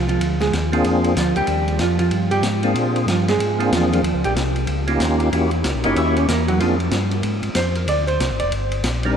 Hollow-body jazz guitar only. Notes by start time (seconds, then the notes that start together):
0.09 F3 F4
0.40 G#3 G#4
1.17 F3 F4
1.37 G3 G4
1.81 F3 F4
1.99 F3 F4
2.31 G3 G4
3.10 F3 F4
3.29 G#3 G#4
3.75 F3 F4
3.93 F3 F4
4.25 G3 G4
5.84 D#4 D#5
5.98 E4 E5
6.17 C#4 C#5
6.30 A#3 A#4
6.48 F#3 F#4
6.61 F3 F4
7.56 C5
7.76 A#4
7.89 D5
8.07 C5
8.40 D5